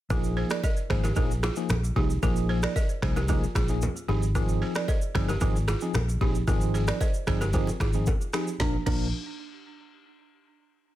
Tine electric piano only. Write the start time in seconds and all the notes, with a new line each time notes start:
0.10 F3 A#3 D#4 G#4
0.90 F3 A#3 D#4 G#4
1.16 F3 A#3 D#4 G#4
1.57 F3 A#3 D#4 G#4
1.96 F3 A#3 D#4 G#4
2.23 F3 A#3 D#4 G#4
3.02 F3 A#3 D#4 G#4
3.29 F3 A#3 D#4 G#4
3.69 F3 A#3 D#4 G#4
4.08 F3 C4 D#4 G#4
4.35 F3 C4 D#4 G#4
5.15 F3 C4 D#4 G#4
5.41 F3 C4 D#4 G#4
5.82 F3 C4 D#4 G#4
6.21 F3 C4 D#4 G#4
6.47 F3 C4 D#4 G#4
7.27 F3 C4 D#4 G#4
7.54 F3 C4 D#4 G#4
7.94 F3 C4 D#4 G#4
8.33 F3 C4 D#4 G#4
8.60 F3 A#3 D4 A#4
8.86 F3 A#3 D4 A#4